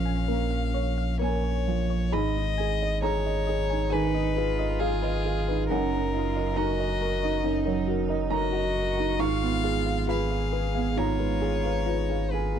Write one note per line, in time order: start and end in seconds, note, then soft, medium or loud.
0.00 2.12 A#1 medium
0.00 0.24 A#2 medium
0.00 0.56 F3 soft
0.00 0.10 A#3 soft
0.00 1.62 C#4 medium
0.00 0.74 C#5 soft
0.00 1.20 F5 medium
0.05 0.19 G#5 medium
0.28 1.03 A#3 soft
0.28 0.42 A#4 medium
0.51 0.65 F5 medium
0.74 0.88 C#5 medium
0.74 1.48 C#5 soft
0.98 1.12 F5 medium
1.19 1.95 A#3 soft
1.19 1.33 A#4 medium
1.19 2.15 C#5 medium
1.19 2.09 G#5 medium
1.44 1.58 C#5 medium
1.68 2.13 F3 soft
1.90 2.04 C#5 medium
2.12 5.71 G#1 medium
2.12 3.88 G#2 medium
2.12 2.26 G#4 medium
2.12 3.02 D#5 medium
2.12 2.99 B5 medium
2.37 2.72 D#4 medium
2.58 2.95 G#4 medium
2.58 2.71 G#5 medium
2.82 3.17 D#5 medium
3.02 3.17 G#4 medium
3.02 3.39 G#4 medium
3.02 3.93 C#5 medium
3.02 3.88 A#5 medium
3.26 3.61 D#5 medium
3.47 3.84 G#4 medium
3.47 3.61 D#5 medium
3.70 4.06 D#4 soft
3.70 3.83 G#5 medium
3.90 4.28 D#3 medium
3.90 4.37 D#4 medium
3.90 4.05 G#4 medium
3.90 4.81 B4 medium
3.90 4.75 G#5 medium
4.15 4.50 D#4 medium
4.15 4.28 D#5 medium
4.36 5.71 F4 medium
4.36 4.72 G#4 medium
4.36 4.50 B4 medium
4.59 4.72 D#5 medium
4.59 4.95 D#5 medium
4.79 5.68 G#4 medium
4.79 4.94 G#4 medium
4.79 5.17 G#4 medium
4.79 5.66 F5 medium
5.02 5.16 B4 medium
5.02 5.39 D#5 medium
5.25 5.61 G#4 medium
5.48 5.71 D#4 soft
5.48 5.61 B4 medium
5.68 9.21 F#1 medium
5.68 7.41 F#2 medium
5.68 6.16 D#4 medium
5.68 5.84 D#4 medium
5.68 6.59 A#4 medium
5.68 6.54 F#5 medium
5.94 6.28 D#4 medium
6.14 6.59 F4 medium
6.14 6.50 A#4 medium
6.14 6.28 D#5 medium
6.37 6.71 D#5 medium
6.56 6.71 D#4 medium
6.56 7.44 F#4 medium
6.56 6.93 A#4 medium
6.56 7.88 D#5 medium
6.56 7.83 A#5 medium
6.80 7.14 D#5 medium
7.01 7.36 A#4 medium
7.01 7.14 A#4 medium
7.23 7.58 D#4 medium
7.23 7.36 D#5 medium
7.44 9.17 F#2 medium
7.44 7.57 D#4 medium
7.44 8.35 D#4 medium
7.66 8.02 F#3 medium
7.66 7.79 A#4 medium
7.88 8.01 F#4 medium
7.88 8.24 A#4 medium
8.09 8.22 A#4 medium
8.09 8.45 D#5 medium
8.30 8.44 D#4 medium
8.30 9.20 F#4 medium
8.30 8.67 A#4 medium
8.30 9.21 D#5 medium
8.30 9.16 A#5 medium
8.53 8.66 F#4 medium
8.53 8.90 D#5 medium
8.77 9.12 A#4 medium
8.98 9.21 D#4 soft
8.98 9.11 F#4 medium
9.19 12.59 G#1 medium
9.19 10.93 G#2 medium
9.19 9.33 F4 medium
9.19 10.11 F4 medium
9.19 10.08 F5 loud
9.19 10.04 C#6 loud
9.42 9.78 B3 medium
9.64 10.00 G#4 medium
9.64 9.77 F5 medium
9.86 10.22 F5 medium
10.08 10.21 F4 medium
10.08 10.99 G#4 medium
10.08 10.44 B4 medium
10.08 10.99 F5 medium
10.08 10.93 B5 medium
10.30 10.66 F5 medium
10.53 10.88 G#4 soft
10.53 10.66 B4 medium
10.75 11.11 B3 soft
10.75 10.88 F5 medium
10.97 12.59 G#2 soft
10.97 11.10 F4 medium
10.97 11.88 F4 medium
10.97 12.33 C#5 medium
10.97 12.29 A#5 medium
11.19 11.55 G#3 soft
11.19 11.33 B4 medium
11.42 11.55 G#4 medium
11.42 11.78 G#4 soft
11.65 11.78 B4 medium
11.65 12.01 F5 soft
11.86 12.34 D#4 medium
11.86 12.00 F4 medium
11.86 12.23 B4 soft
12.10 12.23 G#4 medium
12.10 12.47 F5 soft
12.31 12.59 F4 medium
12.31 12.59 G#4 soft
12.31 12.59 B4 medium
12.31 12.59 G#5 medium
12.55 12.59 B3 soft
12.55 12.59 G#4 medium